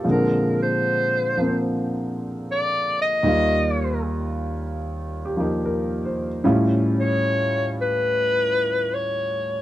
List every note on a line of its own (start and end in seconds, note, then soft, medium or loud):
0.00 3.25 A#2 soft
0.00 0.20 F4 soft
0.05 1.36 F3 soft
0.05 3.26 G#3 soft
0.05 1.39 C4 soft
0.09 3.27 D3 medium
0.09 0.58 A#4 medium
0.63 1.63 C5 medium
1.37 3.24 F3 soft
1.37 3.25 A#3 soft
1.37 3.26 C4 soft
2.52 2.98 D5 medium
3.02 4.03 D#5 medium
3.23 6.43 D#2 medium
3.23 6.43 D#3 medium
3.23 6.43 G3 medium
3.28 6.44 F4 medium
5.25 5.39 G4 soft
5.37 6.43 F3 soft
5.37 6.44 A#3 soft
5.37 6.45 D#4 soft
5.37 6.45 G4 soft
5.65 6.27 A#4 medium
6.05 6.61 C5 soft
6.44 9.62 A2 medium
6.44 9.62 G3 medium
6.44 9.62 C#4 medium
6.44 9.62 E4 medium
6.44 9.62 F4 medium
7.00 7.75 C#5 medium
7.81 8.96 B4 medium
8.95 9.62 C#5 medium